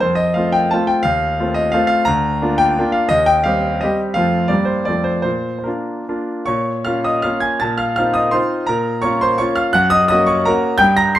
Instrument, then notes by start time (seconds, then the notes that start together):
grand piano
0.00 F2 C5
0.15 D#5
0.34 A3 C4 F4 F5
0.52 G5
0.71 A3 C4 F4 A5
0.87 G5
1.03 D#2 F5
1.40 A3 C4 F4
1.54 D#5
1.72 A3 C4 F4 F5
1.87 F5
2.05 D2 A#5
2.42 A#3 D4 F4
2.58 G5
2.79 A#3 D4 F4
2.92 F5
3.09 D#2 D#5
3.26 G5
3.44 G3 C4 G4 F5
3.81 G3 C4 G4 D#5
4.14 F2 A3 C4 F4 F5
4.48 G2 G3 A#3 A#4 D5
4.65 C5
4.85 F2 A3 C4 F4 D5
5.04 C5
5.22 A#2 C5
5.58 C5
5.64 A#3 D4 F4 A#4
6.09 A#3 D4 F4
6.46 A#2 C#5 C#6
6.85 A#3 C#4 F4 F5 F6
7.04 D#5 D#6
7.22 A#3 C#4 F4 F5 F6
7.40 G#5 G#6
7.60 A#2 A5 A6
7.78 F5 F6
7.96 C4 D#4 F4 F5 F6
8.14 D#5 D#6
8.31 C4 D#4 F4 C5 C6
8.67 A#2 A#4 A#5
9.02 A#3 C#4 F4 C#5 C#6
9.21 C5 C6
9.38 A#3 C#4 F4 C#5 C#6
9.55 F5 F6
9.73 F#2 F#5 F#6
9.90 D#5 D#6
10.08 A#3 C#4 F#4 D#5 D#6
10.26 C#5 C#6
10.45 A#3 C#4 F#4 A#4 A#5
10.78 G2 G5 G6
10.97 A#5 A#6
11.15 C7